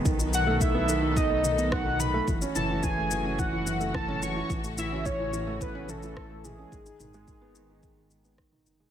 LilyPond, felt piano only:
\new Staff \with { instrumentName = "Felt piano" } { \clef bass \time 4/4 \key b \mixolydian \tempo 4 = 108 dis16 dis'16 dis16 a16 dis16 b16 dis16 dis'16 dis16 a16 dis16 b16 dis16 dis'16 dis16 a16 | e16 cis'16 e16 e'16 e16 a16 e16 cis'16 e16 e'16 e16 a16 e16 cis'16 e16 e'16 | e16 a16 e16 cis'16 e16 e'16 e16 a16 e16 cis'16 e16 e'16 r16 a16 e16 cis'16 | dis16 dis'16 dis16 gis16 dis16 b16 dis16 dis'16 dis16 gis16 dis16 b16 dis16 dis'16 dis16 gis16 | }